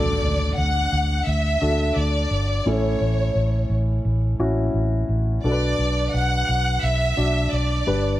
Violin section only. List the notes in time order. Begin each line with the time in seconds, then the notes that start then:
Already playing: D5
0.57 F#5
1.27 E5
1.95 D5
2.67 C#5
5.44 D5
6.15 F#5
6.83 E5
7.53 D5